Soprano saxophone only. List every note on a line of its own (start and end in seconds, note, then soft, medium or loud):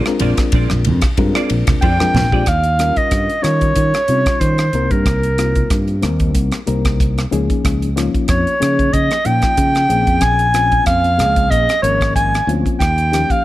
1.81 2.50 G5 medium
2.48 2.98 F5 medium
2.97 3.44 D#5 medium
3.43 4.41 C#5 medium
4.40 4.93 C5 medium
4.91 5.88 A#4 medium
8.29 8.94 C#5 medium
8.93 9.27 D#5 medium
9.25 10.23 G5 loud
10.21 10.86 G#5 loud
10.86 11.52 F5 medium
11.50 11.82 D#5 medium
11.82 12.13 C#5 medium
12.15 12.51 G#5 medium
12.79 13.32 G5 medium
13.31 13.45 F5 medium